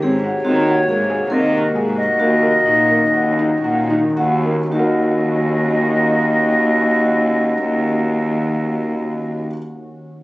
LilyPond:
<<
  \new Staff \with { instrumentName = "Flute" } { \time 5/4 \key ees \dorian \tempo 4 = 109 des''2. ees''4 r8 ees''8~ | ees''1 r4 | ees''1~ ees''4~ | ees''1~ ees''4 | }
  \new Staff \with { instrumentName = "Felt piano" } { \time 5/4 \key ees \dorian c'8 ges'8 c'8 ges'8 bes8 aes'8 c'4 aes'4 | bes8 bes'4 bes8 ges'8 ees'8 ges'8 ees'8 ges'8 bes8 | <ees' ges' bes' ees''>1~ <ees' ges' bes' ees''>4~ | <ees' ges' bes' ees''>1~ <ees' ges' bes' ees''>4 | }
  \new Staff \with { instrumentName = "Vibraphone" } { \time 5/4 \key ees \dorian aes'4 ges'4 aes'4 bes'2 | ges'4 ees'2. ges'4 | ges'1~ ges'4~ | ges'1~ ges'4 | }
  \new Staff \with { instrumentName = "Ambient pad" } { \time 5/4 \key ees \dorian << { ges'1~ ges'4~ | ges'1~ ges'4 | <ees des' ges'>1~ <ees des' ges'>4~ | <ees des' ges'>1~ <ees des' ges'>4 | } \\ { <c bes>1~ <c bes>4 | <ees des'>1~ <ees des'>4 | r1 r4 | r1 r4 | } >> }
  \new Staff \with { instrumentName = "Cello" } { \clef bass \time 5/4 \key ees \dorian aes,4 ees4 aes,4 ees4 aes,4 | ees,4 bes,4 ees,4 bes,4 ees,4 | ees,1~ ees,4~ | ees,1~ ees,4 | }
>>